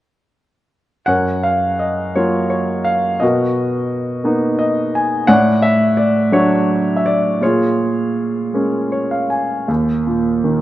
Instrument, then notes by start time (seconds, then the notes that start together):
grand piano
1.06 F#2 A#4 C#5 F#5
1.43 F5
1.79 D#5
2.16 F#3 A#3 F4 C#5
2.50 C#5
2.84 F5
3.20 B2 F#4 A#4 D#5
4.24 A#3 B3 D#4
4.59 D#5
4.95 G#5
5.27 A2 C#5 D5 F#5
5.62 E5
5.97 D5
6.32 F#3 A3 D4 F#4 C#5
6.96 E5
7.06 D5
7.41 A#2 F4 G#4 C#5
8.53 G#3 A#3 C#4
8.92 C#5
9.11 F5
9.30 G#5
9.68 D#2
10.07 A#2
10.44 D#3